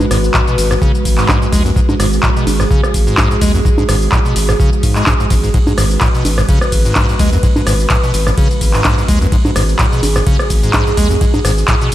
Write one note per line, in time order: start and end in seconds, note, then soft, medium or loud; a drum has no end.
0.00 11.95 G#3 medium
0.00 11.95 F#4 medium
0.00 1.75 B4 medium
0.00 high conga medium
0.00 shaker soft
0.11 0.30 G#1 loud
0.11 0.18 G#2 medium
0.11 cross-stick medium
0.11 open hi-hat loud
0.11 shaker medium
0.24 shaker soft
0.34 0.42 A2 loud
0.34 kick loud
0.34 clap loud
0.34 shaker soft
0.47 0.56 B2 medium
0.47 shaker soft
0.58 0.77 G#1 medium
0.58 open hi-hat loud
0.58 shaker medium
0.71 0.74 G#2 medium
0.71 cross-stick medium
0.71 shaker soft
0.82 0.92 C#3 loud
0.82 kick loud
0.82 shaker soft
0.95 shaker soft
1.05 1.25 G#1 loud
1.05 kick medium
1.05 open hi-hat loud
1.05 shaker medium
1.18 1.27 G#2 medium
1.18 clap soft
1.18 shaker soft
1.28 1.39 G#2 loud
1.28 kick loud
1.28 clap loud
1.28 high conga medium
1.28 shaker soft
1.42 1.48 G#2 medium
1.42 shaker soft
1.52 1.72 D#2 medium
1.52 1.63 G#3 loud
1.52 kick medium
1.52 open hi-hat loud
1.52 shaker medium
1.65 1.71 F#2 loud
1.65 shaker soft
1.76 1.80 G#2 loud
1.76 5.53 G#4 medium
1.76 kick loud
1.76 shaker soft
1.89 1.95 G#2 medium
1.89 high conga medium
1.89 shaker soft
2.00 2.19 G#1 loud
2.00 2.07 G#2 medium
2.00 cross-stick medium
2.00 open hi-hat loud
2.00 shaker medium
2.13 shaker soft
2.23 2.30 A2 loud
2.23 kick loud
2.23 clap loud
2.23 shaker soft
2.36 2.45 B2 medium
2.36 shaker soft
2.47 2.66 G#1 medium
2.47 open hi-hat loud
2.47 high conga soft
2.47 shaker medium
2.60 2.63 G#2 medium
2.60 cross-stick medium
2.60 shaker soft
2.71 2.81 C#3 loud
2.71 kick loud
2.71 shaker soft
2.83 cross-stick medium
2.83 shaker soft
2.94 3.14 G#1 loud
2.94 kick medium
2.94 open hi-hat loud
2.94 shaker medium
3.07 3.16 G#2 medium
3.07 shaker soft
3.17 3.28 G#2 loud
3.17 kick loud
3.17 clap loud
3.17 high conga medium
3.17 shaker soft
3.31 3.37 G#2 medium
3.31 shaker soft
3.41 3.61 D#2 medium
3.41 3.52 G#3 loud
3.41 kick medium
3.41 open hi-hat loud
3.41 shaker medium
3.54 3.60 F#2 loud
3.54 shaker soft
3.65 3.69 G#2 loud
3.65 kick loud
3.65 shaker soft
3.78 3.84 G#2 medium
3.78 high conga medium
3.78 shaker soft
3.89 4.08 G#1 loud
3.89 3.96 G#2 medium
3.89 cross-stick medium
3.89 open hi-hat loud
3.89 shaker medium
4.02 shaker soft
4.12 4.19 A2 loud
4.12 kick loud
4.12 clap loud
4.12 shaker soft
4.25 4.34 B2 medium
4.25 shaker soft
4.36 4.55 G#1 medium
4.36 open hi-hat loud
4.36 shaker medium
4.49 4.52 G#2 medium
4.49 cross-stick medium
4.49 shaker soft
4.60 4.70 C#3 loud
4.60 kick loud
4.60 shaker soft
4.73 shaker soft
4.83 5.03 G#2 loud
4.83 kick medium
4.83 open hi-hat loud
4.83 shaker medium
4.95 5.05 G#3 medium
4.95 clap soft
4.95 shaker soft
5.06 5.14 G#2 loud
5.06 kick loud
5.06 clap loud
5.06 high conga medium
5.06 shaker soft
5.20 5.26 G#2 medium
5.20 shaker soft
5.30 5.50 G#1 medium
5.30 5.35 G#2 loud
5.30 kick medium
5.30 open hi-hat loud
5.30 shaker medium
5.43 5.49 G#2 medium
5.43 shaker soft
5.54 5.58 G#2 loud
5.54 9.31 B4 medium
5.54 kick loud
5.54 ride medium
5.54 shaker soft
5.67 5.73 G#2 medium
5.67 high conga medium
5.67 shaker soft
5.78 5.97 G#1 loud
5.78 5.85 G#2 medium
5.78 cross-stick medium
5.78 open hi-hat loud
5.78 shaker medium
5.91 shaker soft
6.01 6.09 A2 loud
6.01 kick loud
6.01 clap loud
6.01 ride medium
6.01 shaker soft
6.14 6.23 B2 medium
6.14 shaker soft
6.25 6.44 G#1 medium
6.25 open hi-hat loud
6.25 high conga soft
6.25 shaker medium
6.38 6.41 G#2 medium
6.38 cross-stick medium
6.38 shaker soft
6.49 6.59 C#3 loud
6.49 kick loud
6.49 ride medium
6.49 shaker soft
6.61 cross-stick medium
6.61 shaker soft
6.72 6.92 G#1 loud
6.72 kick medium
6.72 open hi-hat loud
6.72 shaker medium
6.85 6.94 G#2 medium
6.85 shaker soft
6.95 7.07 G#2 loud
6.95 kick loud
6.95 clap loud
6.95 ride medium
6.95 high conga medium
6.95 shaker soft
7.09 7.15 G#2 medium
7.09 shaker soft
7.19 7.39 D#2 medium
7.19 7.30 G#3 loud
7.19 kick medium
7.19 open hi-hat loud
7.19 shaker medium
7.32 7.38 F#2 loud
7.32 shaker soft
7.43 7.47 G#2 loud
7.43 kick loud
7.43 ride medium
7.43 shaker soft
7.56 7.62 G#2 medium
7.56 high conga medium
7.56 shaker soft
7.67 7.86 G#1 loud
7.67 7.74 G#2 medium
7.67 cross-stick medium
7.67 open hi-hat loud
7.67 shaker medium
7.80 shaker soft
7.90 7.97 A2 loud
7.90 kick loud
7.90 clap loud
7.90 ride medium
7.90 shaker soft
8.03 8.12 B2 medium
8.03 shaker soft
8.14 8.33 G#1 medium
8.14 open hi-hat loud
8.14 shaker medium
8.27 8.30 G#2 medium
8.27 cross-stick medium
8.27 shaker soft
8.38 8.48 C#3 loud
8.38 kick loud
8.38 ride medium
8.38 shaker soft
8.51 shaker soft
8.61 8.81 G#1 loud
8.61 kick medium
8.61 open hi-hat loud
8.61 shaker medium
8.73 8.83 G#2 medium
8.73 clap soft
8.73 shaker soft
8.84 8.95 G#2 loud
8.84 kick loud
8.84 clap loud
8.84 ride medium
8.84 high conga medium
8.84 shaker soft
8.98 9.04 G#2 medium
8.98 shaker soft
9.08 9.28 D#2 medium
9.08 9.19 G#3 loud
9.08 kick medium
9.08 open hi-hat loud
9.08 shaker medium
9.21 9.27 F#2 loud
9.21 shaker soft
9.32 9.36 G#2 loud
9.32 11.95 G#4 loud
9.32 kick loud
9.32 ride medium
9.32 shaker soft
9.45 9.51 G#2 medium
9.45 high conga medium
9.45 shaker soft
9.56 9.75 G#1 loud
9.56 9.63 G#2 medium
9.56 cross-stick medium
9.56 open hi-hat loud
9.56 shaker medium
9.69 shaker soft
9.79 9.86 A2 loud
9.79 kick loud
9.79 clap loud
9.79 ride medium
9.79 shaker soft
9.92 10.01 B2 medium
9.92 shaker soft
10.03 10.22 G#1 medium
10.03 open hi-hat loud
10.03 high conga soft
10.03 shaker medium
10.16 10.19 G#2 medium
10.16 cross-stick medium
10.16 shaker soft
10.27 10.37 C#3 loud
10.27 kick loud
10.27 ride medium
10.27 shaker soft
10.39 cross-stick medium
10.39 shaker soft
10.50 10.70 G#1 loud
10.50 kick medium
10.50 open hi-hat loud
10.50 shaker medium
10.63 10.72 G#2 medium
10.63 shaker soft
10.73 10.84 G#2 loud
10.73 kick loud
10.73 clap loud
10.73 ride medium
10.73 high conga medium
10.73 shaker soft
10.87 10.93 G#2 medium
10.87 shaker soft
10.97 11.17 D#2 medium
10.97 11.08 G#3 loud
10.97 kick medium
10.97 open hi-hat loud
10.97 shaker medium
11.10 11.16 F#2 loud
11.10 shaker soft
11.21 11.25 G#2 loud
11.21 kick loud
11.21 ride medium
11.21 shaker soft
11.34 11.40 G#2 medium
11.34 high conga medium
11.34 shaker soft
11.45 11.64 G#1 loud
11.45 11.52 G#2 medium
11.45 cross-stick medium
11.45 open hi-hat loud
11.45 shaker medium
11.58 shaker soft
11.68 11.75 A2 loud
11.68 kick loud
11.68 clap loud
11.68 ride medium
11.68 shaker soft
11.81 11.90 B2 medium
11.81 shaker soft